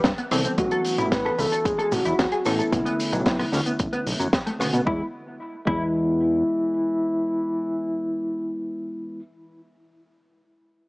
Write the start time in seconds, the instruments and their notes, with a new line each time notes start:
0.04 analog synth bass G2, kick, snare, closed hi-hat, shaker
0.18 clean electric guitar B3, closed hi-hat
0.31 analog synth bass C2, tine electric piano E3 G3 B3 C4 A4, clean electric guitar C4, cross-stick, open hi-hat, high conga, shaker
0.45 clean electric guitar C4, closed hi-hat, shaker
0.57 analog synth bass A1, tine electric piano E3 A3 B3 C#4 F#4, soft synth lead F#4, kick, closed hi-hat, low conga, shaker
0.71 clean electric guitar A4, closed hi-hat
0.85 open hi-hat, shaker
0.98 analog synth bass A1, clean electric guitar E4, closed hi-hat, low conga, shaker
1.12 soft synth lead B4, kick, snare, closed hi-hat, shaker
1.25 clean electric guitar A4, cross-stick
1.38 analog synth bass C#2, soft synth lead A4, clean electric guitar B4, open hi-hat, high conga, shaker
1.52 clean electric guitar A4, closed hi-hat, shaker
1.65 analog synth bass F#1, soft synth lead G#4, kick, closed hi-hat, shaker
1.79 clean electric guitar A4, closed hi-hat
1.92 analog synth bass A1, soft synth lead F#4, open hi-hat, low conga, shaker
2.05 analog synth bass E2, clean electric guitar E4, closed hi-hat, shaker
2.19 analog synth bass E2, kick, snare, closed hi-hat, shaker
2.32 clean electric guitar G#4, closed hi-hat
2.45 analog synth bass A1, tine electric piano E3 A3 B3 C#4 A4, soft synth lead E4, clean electric guitar A4, cross-stick, open hi-hat, shaker
2.59 clean electric guitar A4, closed hi-hat, shaker
2.71 analog synth bass B1, tine electric piano D3 A3 B3 C#4 E4, kick, closed hi-hat, low conga, shaker
2.86 clean electric guitar B3, closed hi-hat
3.00 open hi-hat, shaker
3.13 analog synth bass B1, clean electric guitar F#3, closed hi-hat, low conga, shaker
3.26 kick, snare, closed hi-hat, shaker
3.39 clean electric guitar B3, cross-stick, open hi-hat
3.52 analog synth bass D2, clean electric guitar C#4, snare, open hi-hat, high conga, shaker
3.66 clean electric guitar B3, closed hi-hat, shaker
3.79 analog synth bass A1, kick, closed hi-hat, shaker
3.93 clean electric guitar B3, closed hi-hat
4.06 analog synth bass B1, open hi-hat, shaker
4.20 analog synth bass F#2, clean electric guitar F#3, closed hi-hat, shaker
4.33 kick, snare, closed hi-hat, shaker
4.47 clean electric guitar A3, closed hi-hat
4.59 analog synth bass B2, tine electric piano D3 A3 B3 C#4 F#4, clean electric guitar B3, cross-stick, open hi-hat, high conga, shaker
4.73 analog synth bass B2, clean electric guitar B3, closed hi-hat, shaker
4.85 analog synth bass E2, tine electric piano G#3 B3 E4, clean electric guitar E4, soft synth lead E4, kick
5.66 analog synth bass E2, tine electric piano G#3 B3 E4, clean electric guitar E4, soft synth lead E4, kick